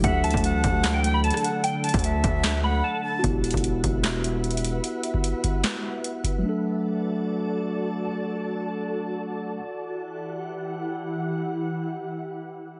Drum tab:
HH |x-----------x---x---x---x-----------x-----------------------x-----------x---x---x---x-----------|x-----------x--x--x--x--x-----------x-----------x-----------------------------------------------|x-----------x---x---x---x-----------x-----------------------x-----------x---x---x---x-----------|x-----------x-----------x-----------x-----------x-----------------------x-----------x-----------|
CP |------------------------------------------------x-----------------------------------------------|------------------------------------------------x-----------------------------------------------|------------------------------------------------x-----------------------------------------------|------------------------------------------------x-----------------------------------------------|
SD |------------------------------------------------o-----------------------------r-----------------|------------------r-----------------------------o-----------------------------------------------|------------------------------------------------o-----------------------------------------------|------------------------------------------------o-----------------------------------------------|
BD |o-----------------o-----------------o-----------------------------------------------------------|------------------o-----------------o-----------------------------------------------------------|o-----------------o-----------------o-----------------------------------------------------------|------------------o-----------------o-----------------------------------------------o-----------|

HH |------------------------------------------------------------------------------------------------|------------------------------------------------------------------------------------------------|------------------------------------------------------------------------------------------------|------------------------------------------------------------------------------------------------|
CP |------------------------------------------------------------------------------------------------|------------------------------------------------------------------------------------------------|------------------------------------------------------------------------------------------------|------------------------------------------------------------------------------------------------|
SD |------------------------------------------------------------------------------------------------|------------------------------------------------------------------------------------------------|------------------------------------------------------------------------------------------------|------------------------------------------------------------------------------------------------|
BD |------------------------------------------------------------------------------------------------|------------------------------------------------------------------------------------------------|------------------------------------------------------------------------------------------------|------------------------------------------------------------------------------------------------|